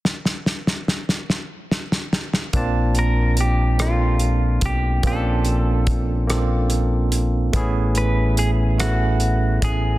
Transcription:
<<
  \new Staff \with { instrumentName = "Clean electric guitar" } { \time 6/8 \key bes \major \tempo 4. = 48 r2. | r8 bes'8 g'8 f'4 g'8 | a'2~ a'8 r8 | r8 b'8 gis'8 ges'4 gis'8 | }
  \new Staff \with { instrumentName = "Tine electric piano" } { \time 6/8 \key bes \major r2. | <bes c' d' f' a''>4 r8 <bes c' d' f' a'>4 r8 | <bes c' des' d' f' c''>4 r8 <bes c' d' f' a'>4 r8 | <a b cis' e' gis'>4 r8 <a b cis' e' a'>4 r8 | }
  \new Staff \with { instrumentName = "Fingered electric bass" } { \clef bass \time 6/8 \key bes \major r2. | bes,,2~ bes,,8 ces,8 | bes,,2. | a,,2~ a,,8 a,,8 | }
  \new DrumStaff \with { instrumentName = "Drums" } \drummode { \time 6/8 sn16 sn16 sn16 sn16 sn16 sn16 sn8 sn16 sn16 sn16 sn16 | <hh bd>8 hh8 hh8 <hh ss>8 hh8 <hh bd>8 | <hh bd>8 hh8 <hh bd>8 <hh ss>8 hh8 hh8 | <hh bd>8 hh8 hh8 <hh ss>8 hh8 <hh bd>8 | }
>>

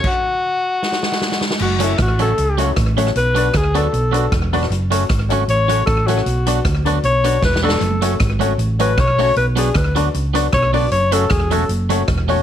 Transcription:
<<
  \new Staff \with { instrumentName = "Alto saxophone" } { \time 4/4 \key fis \minor \tempo 4 = 155 r1 | fis'8 e'8 fis'8 a'4. r4 | b'4 gis'8 a'4. r4 | r2 cis''4 a'8 fis'8~ |
fis'4 r4 cis''4 b'8 a'8~ | a'4 r4. b'8 cis''4 | b'8 gis'8 b'8 r4. cis''8 d''8 | cis''8 a'8 gis'8 a'8 r2 | }
  \new Staff \with { instrumentName = "Upright piano" } { \time 4/4 \key fis \minor r1 | r8 <cis' fis' a' cis''>8 r8 <cis' fis' a' cis''>8 r8 <cis' fis' a' cis''>8 r8 <cis' fis' a' cis''>8 | r8 <d' fis' b' d''>8 r8 <d' fis' b' d''>8 r8 <d' fis' b' d''>8 r8 <d' fis' b' d''>8 | r8 <cis' fis' a' cis''>8 r8 <cis' fis' a' cis''>8 r8 <cis' fis' a' cis''>8 r8 <cis' fis' a' cis''>8 |
r8 <d' fis' b' d''>8 r8 <d' fis' b' d''>8 r8 <d' fis' b' d''>8 r8 <d' fis' b' d''>8 | r8 <cis' fis' a' cis''>8 r8 <cis' fis' a' cis''>8 r8 <cis' fis' a' cis''>8 r8 <cis' fis' a' cis''>8 | r8 <d' fis' b' d''>8 r8 <d' fis' b' d''>8 r8 <d' fis' b' d''>8 r8 <d' fis' b' d''>8 | r8 <cis' fis' a' cis''>8 r8 <cis' fis' a' cis''>8 r8 <cis' fis' a' cis''>8 r8 <cis' fis' a' cis''>8 | }
  \new Staff \with { instrumentName = "Harmonica" } { \time 4/4 \key fis \minor fis'2.~ fis'8 r8 | r1 | r1 | r1 |
r1 | r1 | r1 | r1 | }
  \new Staff \with { instrumentName = "Clean electric guitar" } { \time 4/4 \key fis \minor r1 | r8 <fis a cis' fis'>8 r8 <fis a cis' fis'>8 r8 <fis a cis' fis'>8 r8 <fis a cis' fis'>8 | r8 <fis b d' fis'>8 r8 <fis b d' fis'>8 r8 <fis b d' fis'>8 r8 <fis b d' fis'>8 | r8 <fis a cis' fis'>8 r8 <fis a cis' fis'>8 r8 <fis a cis' fis'>8 r8 <fis a cis' fis'>8 |
r8 <fis b d' fis'>8 r8 <fis b d' fis'>8 r8 <fis b d' fis'>8 r8 <fis b d' fis'>8 | r8 <fis a cis' fis'>8 r8 <fis a cis' fis'>8 r8 <fis a cis' fis'>8 r8 <fis a cis' fis'>8 | r8 <fis b d' fis'>8 r8 <fis b d' fis'>8 r8 <fis b d' fis'>8 r8 <fis b d' fis'>8 | r8 <fis a cis' fis'>8 r8 <fis a cis' fis'>8 r8 <fis a cis' fis'>8 r8 <fis a cis' fis'>8 | }
  \new Staff \with { instrumentName = "Fingered electric bass" } { \clef bass \time 4/4 \key fis \minor r1 | fis,,4 a,,4 cis,4 a,,4 | b,,4 d,4 b,,4 e,,4 | fis,,4 gis,,4 a,,4 a,,4 |
b,,4 d,4 b,,4 e,,4 | fis,,4 gis,,4 a,,4 b,,4 | b,,4 d,4 cis,4 b,,4 | fis,,4 e,,4 fis,,4 e,,4 | }
  \new DrumStaff \with { instrumentName = "Drums" } \drummode { \time 4/4 <cymc bd>4 r4 sn16 sn16 sn16 sn16 sn16 sn16 sn16 sn16 | cymc8 hh8 <hh bd ss>8 hh8 hh8 hh8 <hh bd ss>8 hh16 ss16 | hh8 hh8 <hh bd ss>8 hh8 hh8 hh8 <hh bd ss>8 hho16 ss16 | hh8 hh8 <hh bd ss>8 hh8 hh8 hh8 <hh bd ss>8 hh16 ss16 |
hh8 hh8 <hh bd ss>8 hh8 hh8 hh8 \tuplet 3/2 { <bd sn>8 sn8 sn8 } | hh8 hh8 <hh bd ss>8 hh8 hh8 hh8 <hh bd ss>8 hho8 | hh8 hh8 <hh bd ss>8 hh8 hh8 hh8 <hh bd ss>8 hho8 | hh8 hh8 <hh bd ss>8 hh8 hh8 hh8 <hh bd ss>8 hho8 | }
>>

